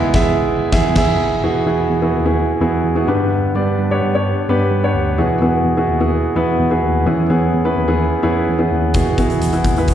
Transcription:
Already playing: G#3 B3 E4 G#4 E5
0.14 E2 G#4 E5, kick, snare
0.72 E2 G#4 E5, kick, snare
0.96 E2 G#4 E5, kick, snare, crash
1.43 E2 B2 B3 E4 F#4 G#4
1.66 E2 B3 E4 F#4 G#4
1.89 E2
2.02 B3 E4 F#4 G#4
2.14 D#2
2.26 B3 E4 F#4 G#4
2.61 E2 B3 E4 F#4 G#4
2.84 E2
2.96 B3 E4 F#4 G#4
3.07 G2 D3 B3 D4 G4 B4
3.55 G2 B3 D4 G4 D5
3.78 G2
3.91 B3 D4 G4 C#5
4.02 G2
4.15 B3 D4 G4 C#5
4.49 G2 B3 D4 G4 B4
4.71 G2
4.83 B3 D4 G4 C#5
4.94 D2
5.18 E2 B2 B3 E4 F#4 G#4
5.42 E2 B3 E4 F#4 G#4
5.65 E2
5.77 B3 E4 F#4 G#4
5.88 D#2
6.00 B3 E4 F#4 G#4
6.36 E2 B3 E4 F#4 B4
6.60 E2
6.71 B3 E4 F#4 G#4
6.83 D#2
7.06 E2 E3 B3 C#4 E4 G#4
7.30 E2 B3 C#4 E4 G#4
7.54 E2
7.65 B3 C#4 E4 B4
7.76 D#2
7.88 B3 C#4 E4 G#4
8.23 E2 B3 C#4 E4 G#4
8.48 E2
8.59 B3 C#4 E4 G#4
8.71 D#2
8.94 E2 B2 B3 E4 F#4 G#4, kick, closed hi-hat
9.18 E2 B3 E4 F#4 G#4, kick, closed hi-hat
9.30 closed hi-hat
9.42 E2, closed hi-hat
9.53 B3 E4 F#4 G#4, closed hi-hat
9.65 D#2, kick, closed hi-hat
9.76 B3 E4 F#4 B4, closed hi-hat
9.88 F#4 B4, kick, closed hi-hat

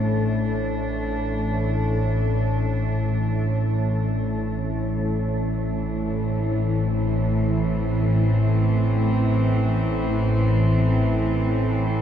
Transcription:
Already playing: A1 A2 E3 D4
5.06 A1 A2
5.89 C4

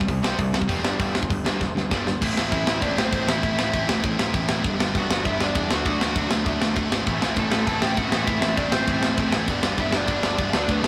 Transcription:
0.01 kick
0.08 C2 C3 G3, kick, open hi-hat
0.23 C2 C3 G3 C4, snare
0.38 C2 C3 G3, kick, open hi-hat
0.53 C3 G3, snare
0.62 kick
0.68 F1 C3 G3 C4, kick, open hi-hat
0.82 G1 G2 D3 G3, snare
0.98 G1 G2 D3 G3, kick, open hi-hat
1.14 G2 D3, snare
1.23 kick
1.29 G1 G2 D3, kick, open hi-hat
1.44 G2 D3 G3, snare
1.60 G1 G2 D3, kick, snare
1.75 G1 G2 D3, snare
1.90 G1 G2 D3 G3, kick, snare
2.07 G2 D3, snare
2.21 A1 A2 E3 A3 C4 E4, kick, crash
2.36 A1 A2 E3 A3 C4 E4, snare
2.51 A1 A2 E3 A3 C4 E4 E5, kick, crash
2.65 A1 A2 E3 A3 C4 E4, snare
2.81 A1 A2 E3 A3 C4 D4 E4 D5, kick, crash
2.96 A1 A2 E3 A3 C4 E4 C5, snare
3.12 A1 A2 E3 A3 C4 E4, kick, crash
3.27 A1 A2 E3 A3 C4 E4 E5, snare
3.43 A1 A2 E3 A3 C4 E4, kick, crash
3.57 A1 A2 E3 A3 C4 E4, snare
3.73 A1 A2 E3 A3 C4 E4, kick, crash
3.88 A1 A2 E3 A3 C4 E4, snare
4.02 A1 A2 E3 A3 C4 E4, kick, crash
4.18 A1 A2 E3 A3 C4 E4, snare
4.32 A1 A2 E3 A3 C4 E4, kick, crash
4.49 A1 A2 E3 A3 C4 E4, snare
4.63 G1 G2 D3 G3 B3 D4, kick, crash
4.78 G1 G2 D3 G3 B3 D4, snare
4.92 G1 G2 D3 G3 B3 D4, kick, crash
4.98 F#4 F#5
5.09 G1 G2 D3 G3 B3 D4, snare
5.23 G1 G2 D3 G3 B3 D4 E4 E5, kick, crash
5.40 G1 G2 D3 G3 B3 D4 D5, snare
5.55 E2 G2 D3 G3 B3 D4, kick, crash
5.70 D2 D3 F#3 A3 D4 F#5, snare
5.74 F#4
5.85 D2 D3 F#3 A3 D4, kick, crash
6.00 D2 D3 F#3 A3 D4, snare
6.15 D2 D3 F#3 A3 D4, kick, crash
6.30 D2 D3 F#3 A3 D4, snare
6.45 D2 D3 F#3 A3 D4, kick, crash
6.59 D2 D3 F#3 A3 D4, snare
6.75 D2 D3 F#3 A3 D4, kick, crash
6.91 G#1 D3 F#3 A3 D4, snare
7.05 A1 A2 E3 A3 C4 E4, kick, crash
7.20 A1 A2 E3 A3 C4 E4, snare
7.35 A1 A2 E3 A3 C4 E4, kick, crash
7.39 A4 A5
7.50 A1 A2 E3 A3 C4 E4, snare
7.66 A1 A2 E3 A3 C4 E4 A4 A5, kick, crash
7.81 A1 A2 E3 A3 C4 E4 G4 G5, snare
7.96 A1 A2 E3 A3 C4 E4 F#4 F#5, kick, crash
8.11 A1 A2 E3 A3 C4 E4, snare
8.26 A1 A2 E3 A3 C4 E4 E5, kick, crash
8.41 A1 A2 E3 A3 C4 E4, snare
8.57 A1 A2 E3 A3 C4 D4 E4 D5, kick, crash
8.72 A1 A2 E3 A3 C4 E4 C5, snare
8.87 A1 A2 E3 A3 C4 E4, kick, crash
9.01 A1 A2 E3 A3 C4 E4, snare
9.17 A1 A2 E3 A3 C4 E4, kick, crash
9.32 A1 A2 E3 A3 C4 E4, snare
9.48 G1 G2 D3 G3 B3 D4, kick, crash
9.62 G1 G2 D3 G3 B3 D4, snare
9.77 G1 G2 D3 G3 B3 D4 E4, kick, crash
9.83 E5
9.92 G1 G2 D3 G3 B3 D4, snare
9.97 D5
10.07 G1 G2 D3 G3 B3 D4, kick, crash
10.22 G1 G2 D3 G3 B3 D4, snare
10.38 G1 G2 D3 G3 B3 D4, kick, crash
10.52 D2 D3 F#3 A3 D4, snare
10.57 D5
10.67 D2 D3 F#3 A3 D4, kick, crash
10.71 B3 B4
10.83 D2 D3 F#3 A3, snare

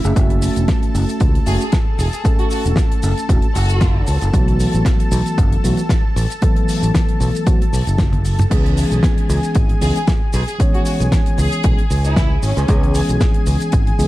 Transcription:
Already playing: E4 E5
0.04 F#1 A3 C#4 G#4, closed hi-hat, shaker
0.15 A3 C#4 F#4 A4 A5, kick, closed hi-hat, shaker
0.30 closed hi-hat
0.42 open hi-hat, shaker
0.56 E1, closed hi-hat, shaker
0.68 kick, snare, closed hi-hat, shaker
0.83 closed hi-hat
0.95 F#1, open hi-hat, shaker
1.09 closed hi-hat, shaker
1.20 C#2, kick, closed hi-hat, shaker
1.35 closed hi-hat
1.46 F#1 A3 C#4 F#4 G#4, open hi-hat, shaker
1.61 G#4, closed hi-hat, shaker
1.72 kick, snare, closed hi-hat, shaker
1.99 E1 G#4, open hi-hat, shaker
2.12 G#4, closed hi-hat, shaker
2.24 A3 C#4 A4, kick, closed hi-hat, shaker
2.39 F#4, closed hi-hat
2.50 F#4, open hi-hat, shaker
2.65 E1, closed hi-hat, shaker
2.76 kick, snare, shaker
2.78 closed hi-hat, shaker
2.92 closed hi-hat
3.03 F#1, open hi-hat, shaker
3.17 closed hi-hat, shaker
3.29 E1 A3 C#4 F#4, kick, closed hi-hat, shaker
3.42 closed hi-hat
3.55 F#1 F#4, open hi-hat, shaker
3.69 closed hi-hat, shaker
3.80 kick, snare, closed hi-hat, shaker
4.07 C#2, open hi-hat, shaker
4.21 F#1, closed hi-hat, shaker
4.33 B1 E3 F#3 A3 B3 F#4, kick, closed hi-hat, shaker
4.48 closed hi-hat
4.60 open hi-hat, shaker
4.73 A1, closed hi-hat, shaker
4.85 kick, snare, closed hi-hat, shaker
5.00 closed hi-hat
5.11 B1, open hi-hat, shaker
5.26 closed hi-hat, shaker
5.38 F#1, kick, closed hi-hat, shaker
5.52 closed hi-hat
5.64 B1 E3 F#3 A3 B3 F#4, open hi-hat, shaker
5.77 closed hi-hat, shaker
5.89 kick, snare, closed hi-hat, shaker
6.16 A1, open hi-hat, shaker
6.30 closed hi-hat, shaker
6.41 E3 F#3 A3 B3 A4, kick, closed hi-hat, shaker
6.56 closed hi-hat
6.68 open hi-hat, shaker
6.83 A1, closed hi-hat, shaker
6.95 kick, snare, closed hi-hat, shaker
7.09 closed hi-hat
7.20 B1, open hi-hat, shaker
7.35 closed hi-hat, shaker
7.46 E3 F#3 A3 B3 F#4, kick, closed hi-hat, shaker
7.62 closed hi-hat
7.73 B1, open hi-hat, shaker
7.87 F#1, closed hi-hat, shaker
7.98 kick, snare, closed hi-hat, high tom, shaker
8.00 shaker
8.13 closed hi-hat, high tom
8.25 open hi-hat, shaker
8.38 closed hi-hat, mid tom, shaker
8.41 shaker
8.50 C#2 E3 G#3 B3 C#4 G#4 G#5, kick, closed hi-hat, crash, shaker
8.66 closed hi-hat
8.77 open hi-hat, shaker
8.91 B1, closed hi-hat, shaker
9.03 kick, snare, closed hi-hat, shaker
9.18 closed hi-hat
9.29 C#2, open hi-hat, shaker
9.43 closed hi-hat, shaker
9.55 G#1, kick, closed hi-hat, shaker
9.69 closed hi-hat
9.81 C#2 E3 G#3 B3 C#4 G#4, open hi-hat, shaker
9.96 G#4, closed hi-hat, shaker
10.07 kick, snare, closed hi-hat, shaker
10.33 B1 G#4, open hi-hat, shaker
10.48 G#4, closed hi-hat, shaker
10.59 E3 G#3 B3 C#4 C#5, kick, closed hi-hat, shaker
10.74 F#4, closed hi-hat
10.85 F#4, open hi-hat, shaker
11.00 B1, closed hi-hat, shaker
11.12 kick, snare, closed hi-hat, shaker
11.26 closed hi-hat
11.38 C#2 G#4, open hi-hat, shaker
11.52 closed hi-hat, shaker
11.63 B1 E3 G#3 B3 C#4 G#4, kick, closed hi-hat, shaker
11.78 closed hi-hat
11.90 C#2, open hi-hat, shaker
12.04 E4, closed hi-hat, shaker
12.16 kick, snare, closed hi-hat, shaker
12.42 G#1 C#4, open hi-hat, shaker
12.57 C#2, closed hi-hat, shaker
12.68 C#2 E3 G#3 B3 C#4 G#4, kick, closed hi-hat, shaker
12.83 closed hi-hat
12.94 open hi-hat, shaker
13.08 B1, closed hi-hat, shaker
13.20 kick, snare, closed hi-hat, shaker
13.34 closed hi-hat
13.46 C#2, open hi-hat, shaker
13.60 closed hi-hat, shaker
13.72 G#1, kick, closed hi-hat, shaker
13.87 closed hi-hat
13.98 C#2 E3 G#3 B3 C#4 G#4, open hi-hat, shaker

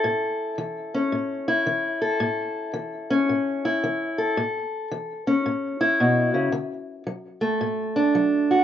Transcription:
Already playing: C#4 E4 A4
0.04 A2
0.58 E3
0.94 C#4
1.12 A2
1.48 E4
1.66 E3
2.02 A4
2.20 A2
2.74 E3
3.10 C#4
3.29 A2
3.65 E4
3.84 E3
4.18 A4
4.37 A2
4.91 E3
5.27 C#4
5.46 A2
5.81 E4
6.00 B2
6.34 C#3
6.52 D3
7.07 F#3
7.41 A3
7.61 A2
7.96 D4
8.15 F#3
8.51 F#4

